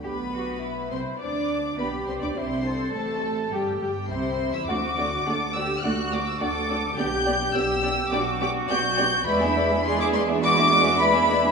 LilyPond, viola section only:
\new Staff \with { instrumentName = "Viola section" } { \time 4/4 \key g \major \tempo 4 = 104 b4. c'8 d'4 b8 c'16 d'16 | c'4 a4 g8 g8 c'8. e'16 | <a d'>8 <a d'>8 <a d'>8 <a d'>8 <a d'>8 <a d'>8 <a d'>8 <a d'>8 | <b d'>8 <b d'>8 <b d'>8 <b d'>8 <b d'>8 <b d'>8 <b d'>8 <b d'>8 |
<gis e'>16 <b d'>16 <gis e'>16 <b d'>16 <gis e'>16 <b d'>16 <gis e'>16 <b d'>16 <gis e'>16 <b d'>16 <gis e'>16 <b d'>16 <gis e'>16 <b d'>16 <gis e'>16 <b d'>16 | }